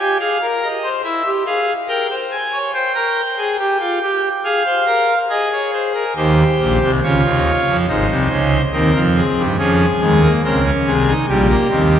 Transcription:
0.00 G4 G#5
0.20 G#4 F5
0.42 A#4
0.63 D#5
0.83 C5
1.04 E4 E5
1.25 G4
1.46 G#4 F5
1.88 A#4 G5
2.10 C5
2.31 G#5
2.52 C#5
2.74 C5 G5
2.95 A#4
3.38 G#4
3.59 G4
3.80 F4
4.02 G4
4.44 G#4 F5
4.66 C5
4.87 A#4
5.30 G#4 D#5
5.52 C#5
5.73 C5
5.94 A#4
6.16 D#2 D#3 G4 C5
6.60 A#1 A#2
6.81 C2 C3
7.03 C#2 C#3 F4 C#5
7.25 D#2 D#3
7.67 F2 F3
7.88 G#1 G#2 D#4 C5
8.09 C2 C3
8.31 C#2 C#3
8.73 D#2 D#3 C4 A#4
8.94 F2 F3
9.16 G#4
9.38 G2 G3
9.59 F2 F3 C#4 G#4
10.01 D#2 D#3 G#3
10.23 A#3
10.44 C#2 C#3 C4 A#4
10.65 C#4
10.86 C2 C3 G#4
11.07 D#4
11.29 A#1 A#2 G3 G4
11.49 A#3
11.70 D#2 D#3 C4

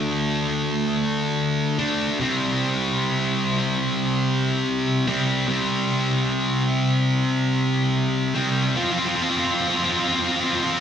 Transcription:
Already playing: D3 A3 D4
1.79 D3 A3 D4
2.19 C3 G3 C4
5.07 C3 G3 C4
5.47 C3 G3 C4
8.35 C3 G3 C4
8.76 C4 F4
8.83 C4 F4
8.91 C4 F4
8.98 C4 F4
9.05 C4 F4
9.15 C4 F4
9.22 C4 F4
9.29 C4 F4
9.37 C4 F4
9.44 C4 F4
9.51 C4 F4
9.60 C4 F4
9.68 C4 F4
9.75 C4 F4
9.83 C4 F4
9.90 C4 F4
9.98 C4 F4
10.05 C4 F4
10.13 C4 F4
10.20 C4
10.24 F4
10.29 C4 F4
10.36 C4
10.40 C4 F4
10.47 F4
10.51 C4 F4
10.59 C4 F4
10.66 C4
10.71 C4 F4

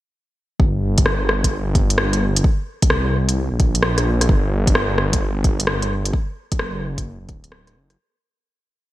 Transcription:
0.60 G1, kick
0.98 kick, closed hi-hat
1.06 cross-stick
1.29 cross-stick
1.44 kick, closed hi-hat
1.75 kick, closed hi-hat
1.90 closed hi-hat
1.98 cross-stick
2.13 closed hi-hat
2.36 closed hi-hat
2.44 kick
2.82 kick, closed hi-hat
2.90 C2, cross-stick
3.29 closed hi-hat
3.52 A#1
3.60 kick, closed hi-hat
3.75 closed hi-hat
3.83 cross-stick
3.98 cross-stick, closed hi-hat
4.21 cross-stick, closed hi-hat
4.29 G1, kick
4.67 kick, closed hi-hat
4.75 cross-stick
4.98 cross-stick
5.13 kick, closed hi-hat
5.44 kick, closed hi-hat
5.60 closed hi-hat
5.67 cross-stick
5.82 closed hi-hat
6.05 closed hi-hat
6.13 kick
6.52 kick, closed hi-hat
6.59 F#1, cross-stick
6.98 kick, closed hi-hat
7.21 F#1
7.29 D1, kick, closed hi-hat
7.44 closed hi-hat
7.52 cross-stick
7.67 cross-stick, closed hi-hat
7.75 F#1
7.90 cross-stick, closed hi-hat

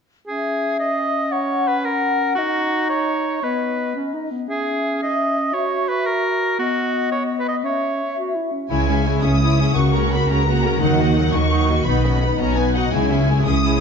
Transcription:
0.27 C#4 G#4 E5
0.79 D#5
1.32 C#5 F#5
1.68 B4
1.84 A#4 F#5
2.35 D#4 F#4 D#5
2.90 C#5
3.42 B3 B4 D#5
3.95 C#4
4.14 D#4
4.31 B3
4.48 C#4 G#4 E5
5.03 D#5
5.53 F#4 C#5
5.89 B4
6.06 A#4
6.58 B3 F#4 D#5
7.12 C#5
7.40 B4
7.48 D#5
7.64 C#4 C#5 E5
8.17 F#4
8.35 E4
8.51 C#4
8.70 C#2 C#3 G#3 E4 C#5 G#5
8.88 G#3 C#4 G#4 E5
9.05 G#3 C#4 E4 C#5
9.22 C#2 C#3 C#4 E4 G#4 E5 D#6
9.39 G#3 E4 C#5
9.58 C#4 E4 G#4 E5
9.75 C#2 C#3 A#3 F#4 A#4 F#5 C#6
9.93 A#3 C#4 F#4 A#4 A#5
10.11 A#3 C#4 F#4 A#4 F#5 B5
10.28 C#2 C#3 C#4 F#4 A#4 A#5
10.46 A#3 F#4 A#4 F#5
10.63 C#4 F#4 A#4 A#5
10.80 D#2 D#3 F#3 D#4 A#4 F#5
10.98 A#3 D#4 F#4 D#5
11.15 F#3 A#3 D#4 A#4 F#5
11.33 D#2 D#3 A#3 F#4 D#5 C#6
11.50 F#3 D#4 A#4 F#5
11.68 A#3 F#4 D#5
11.86 B1 B2 B3 D#4 B4 F#5 B5
12.04 F#3 B3 C#4 F#4 D#5
12.21 B3 D#4 B4 F#5
12.39 B1 B2 C#4 F#4 D#5 A#5
12.56 B3 B4 C#5 F#5 G#5
12.75 D#4 F#4 D#5 F#5
12.92 C#2 C#3 G#3 E4 G#4 C#5 G#5
13.10 G#3 C#4 E4 G#4 E5
13.28 G#3 C#4 E4 G#4 C#5
13.44 C#2 C#3 C#4 E4 G#4 E5 D#6
13.62 G#3 E4 G#4 C#5

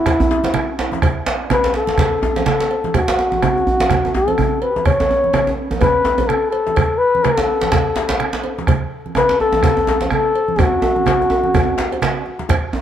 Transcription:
Already playing: E4
0.06 bombo rim, bombo low, cowbell, djembe slap, low conga, djembe bass
0.20 djembe slap, high conga, djembe bass
0.31 djembe slap
0.44 bombo rim, cowbell, djembe slap, high conga, djembe tone
0.54 bombo rim, djembe tone, low conga
0.79 cowbell, djembe slap, high conga
0.92 djembe slap, high conga
1.02 bombo rim, bombo low, cowbell, djembe tone, low conga, djembe bass
1.26 djembe slap
1.50 B4, bombo rim, cowbell, djembe slap, low conga, djembe bass
1.64 djembe slap, djembe tone
1.74 djembe slap, high conga
1.76 A4, djembe slap
1.87 djembe slap, high conga
1.98 bombo rim, bombo low, cowbell, djembe slap, low conga, djembe bass
2.12 djembe slap, high conga
2.23 djembe slap, djembe bass
2.36 bombo rim, cowbell, djembe slap, djembe tone, high conga
2.46 A4, bombo rim, djembe slap, low conga
2.60 djembe slap
2.70 cowbell, djembe slap, high conga
2.84 djembe slap, high conga
2.94 F#4, bombo rim, bombo low, cowbell, djembe tone, low conga, djembe bass
3.08 djembe slap, high conga
3.19 djembe slap
3.32 high conga, djembe tone
3.43 bombo rim, cowbell, djembe slap, high conga, low conga, djembe bass
3.56 high conga, djembe tone
3.67 high conga, djembe bass
3.80 djembe slap, high conga
3.90 bombo rim, bombo low, cowbell, djembe slap, high conga, djembe bass, low conga
4.04 djembe slap, djembe tone
4.14 A4, djembe slap, djembe bass
4.28 cowbell, high conga, djembe tone
4.38 bombo rim, high conga, low conga, djembe bass
4.51 bombo rim
4.62 B4, bombo rim, cowbell, high conga
4.76 djembe slap, high conga
4.85 C#5, bombo rim, bombo low, cowbell, djembe tone, low conga, djembe bass
5.00 djembe tone
5.11 djembe tone
5.24 high conga
5.33 bombo rim, cowbell, djembe slap, djembe tone, low conga
5.47 djembe tone
5.58 djembe slap, high conga
5.71 djembe tone, high conga
5.81 B4, bombo rim, bombo low, cowbell, djembe tone, low conga, djembe bass
5.95 djembe slap, high conga
6.05 djembe slap, djembe tone
6.18 bombo rim, cowbell, djembe slap, djembe tone, high conga
6.27 A4, bombo rim, low conga
6.51 A4, cowbell, djembe slap, high conga
6.67 djembe slap, high conga
6.76 bombo rim, bombo low, cowbell, djembe tone, low conga, djembe bass
6.98 B4
7.15 high conga
7.24 A4, bombo rim, cowbell, djembe slap, low conga
7.38 djembe slap, djembe tone
7.49 djembe slap, high conga
7.61 djembe slap, high conga
7.72 bombo rim, bombo low, cowbell, djembe slap, djembe bass, low conga
7.86 djembe slap, high conga
7.96 djembe slap
8.09 bombo rim, cowbell, djembe slap, high conga, djembe tone
8.20 bombo rim, low conga
8.33 djembe slap
8.44 cowbell, djembe slap, high conga
8.58 djembe slap, high conga
8.67 bombo rim, bombo low, cowbell, djembe tone, djembe bass, low conga
9.06 high conga
9.15 B4, bombo rim, cowbell, djembe slap, djembe tone, low conga
9.29 djembe slap, djembe tone
9.40 A4, djembe slap, djembe tone, high conga
9.52 djembe tone, high conga
9.63 bombo rim, bombo low, cowbell, djembe slap, djembe bass, low conga
9.77 djembe tone
9.87 djembe slap, djembe tone
10.01 bombo rim, cowbell, djembe slap, high conga
10.02 djembe slap, djembe tone
10.11 A4, bombo rim, djembe tone, low conga
10.35 cowbell, djembe slap, high conga
10.48 high conga
10.59 F#4, bombo rim, bombo low, cowbell, djembe slap, djembe tone, low conga, djembe bass
10.72 high conga
10.82 djembe tone
10.96 high conga
11.06 bombo rim, cowbell, djembe slap, high conga, djembe tone, low conga
11.21 djembe slap, djembe tone
11.30 djembe tone
11.43 bombo rim, djembe slap, high conga
11.54 bombo rim, bombo low, cowbell, high conga, djembe tone, low conga, djembe bass
11.68 djembe slap, high conga
11.78 djembe slap
11.92 cowbell, djembe slap, djembe tone
12.02 bombo rim, djembe slap, high conga, low conga
12.26 djembe slap, high conga
12.39 djembe slap, high conga
12.49 bombo rim, bombo low, cowbell, djembe tone, djembe bass, low conga
12.73 djembe tone

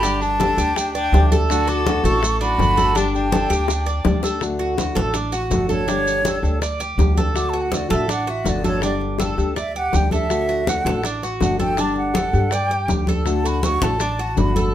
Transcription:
Already playing: G1 G4 B5
0.02 D3 G3 D4 G4, high bongo, high conga, maracas
0.21 D4 A5, high bongo, high conga, maracas
0.40 D3 G3 D4 G4 A4, high bongo, high conga, maracas
0.57 D2 G3 D4 G4, high bongo, high conga, maracas
0.76 D4 G5, muted nylon-string guitar stroke, high bongo, high conga, maracas
0.93 D4 D5 G5, high conga, maracas
1.13 D2 D3 G3 D4 G4, high bongo, low bongo, high conga, maracas
1.31 G3 D4 G4 A4, high bongo, high conga, maracas
1.49 D3 A3 D4 F#4 A5, high bongo, high conga, maracas
1.67 F#4 A4 D6, high bongo, high conga, maracas
1.86 D3 A3 D4 F#4, high bongo, high conga, maracas
2.04 A1 A3 D4 F#4 A4 C#6, high bongo, high conga, maracas
2.23 muted nylon-string guitar stroke, high bongo, high conga, maracas
2.41 D4 F#4 B5, high conga, maracas
2.58 G1 D3 A3 D4 F#4, high bongo, low bongo, high conga, maracas
2.77 A3 D4 F#4 A4, high bongo, high conga, maracas
2.95 D3 G3 D4 G4 A5, high bongo, high conga, maracas
3.14 D4 G5, high bongo, high conga, maracas
3.32 D3 G3 D4 G4 A4, high bongo, high conga, maracas
3.50 D2 G3 D4 G4, high conga, maracas
3.68 muted nylon-string guitar stroke, high bongo, high conga, maracas
3.86 D5, high conga, maracas
4.05 D2 D3 G3 D4 G4, low bongo, high conga, maracas
4.23 G3 D4 G4 A4, low bongo, maracas
4.41 D3 A3 D4 F#4, high bongo, high conga, maracas
4.59 F#4, high bongo, high conga
4.78 D3 A3 D4 F#4, high bongo, high conga, maracas
4.95 A1 A3 D4 F#4 A4, high bongo, high conga, maracas
5.14 D4, muted nylon-string guitar stroke, high bongo, high conga, maracas
5.32 F#4, high bongo, high conga, maracas
5.50 G1 D3 A3 D4 F#4 A4, high bongo, low bongo, high conga, maracas
5.69 A3 D4 A4 C#5, high conga, maracas
5.87 D3 G3 D4 G4, high bongo, high conga, maracas
6.06 high bongo, high conga, maracas
6.24 D3 G3 D4 G4 A4, high bongo, high conga, maracas
6.43 D2 G3 D4 G4, high bongo, high conga, maracas
6.61 D5, muted nylon-string guitar stroke, high bongo, high conga, maracas
6.80 G4, high bongo, high conga, maracas
6.97 D2 D3 G3 D4 G4, high bongo, low bongo, high conga, maracas
7.15 G3 D4 G4 A4, high conga, maracas
7.34 D3 A3 D4 F#4 D6, high bongo, high conga, maracas
7.49 A5
7.53 F#4, high bongo, high conga
7.61 F#5
7.71 D3 A3 D4 F#4 D5, high bongo, high conga, maracas
7.89 A1 A3 D4 F#4 A4 E5, high bongo, high conga, maracas
8.08 D4 F#5, muted nylon-string guitar stroke, high bongo, high conga, maracas
8.27 F#4 E5, high bongo, high conga
8.45 G1 D3 A3 D4 F#4, high bongo, low bongo, high conga, maracas
8.49 D5
8.64 A3 D4 F#4 A4 C#5, high conga, maracas
8.82 D3 G3 D4 G4 D5, high bongo, high conga, maracas
9.00 high bongo, high conga
9.18 D3 G3 D4 G4 A4, high bongo, high conga, maracas
9.37 D2 G3 D4 G4, high bongo, high conga, maracas
9.56 D5 E5, muted nylon-string guitar stroke, high bongo, high conga, maracas
9.75 G4 F#5, high bongo, high conga
9.93 D2 D3 G3 D4 G4 G5, high bongo, low bongo, high conga, maracas
10.11 G3 D4 G4 A4 E5, high conga, maracas
10.29 D3 A3 D4 F#4, high bongo, high conga, maracas
10.48 F#4, high bongo, high conga
10.66 D3 A3 D4 F#4 F#5, high bongo, high conga, maracas
10.85 A1 A3 D4 F#4 A4, high bongo, high conga, maracas
11.04 D4, muted nylon-string guitar stroke, high bongo, high conga, maracas
11.22 F#4, high bongo, high conga, maracas
11.41 G1 D3 A3 D4 F#4 F#5, high bongo, low bongo, high conga, maracas
11.59 A3 D4 F#4 A4 G5, high conga, maracas
11.77 D3 G3 D4 G4 A5, high bongo, high conga, maracas
11.95 F#5, high bongo, high conga
12.14 D3 G3 D4 G4 A4, high bongo, high conga, maracas
12.33 G2 G3 D4 G4, high bongo, high conga, maracas
12.51 D5 G5, muted nylon-string guitar stroke, high bongo, high conga, maracas
12.70 G4, high bongo, high conga
12.88 D2 D3 G3 D4 G4, high bongo, low bongo, high conga, maracas
13.06 G3 D4 G4 A4, high conga, maracas
13.25 D3 A3 D4 F#4 A5, high bongo, high conga, maracas
13.45 F#4 B5, high bongo, high conga, maracas
13.63 D3 A3 D4 F#4 C#6, high bongo, high conga, maracas
13.81 A1 A3 D4 F#4 A4 A5, high bongo, high conga, maracas
14.00 D4, muted nylon-string guitar stroke, high bongo, high conga, maracas
14.19 F#4, high bongo, high conga
14.36 G1 D3 A3 D4 F#4 B5, high bongo, low bongo, high conga, maracas
14.55 A3 F#4 A4, high conga, maracas

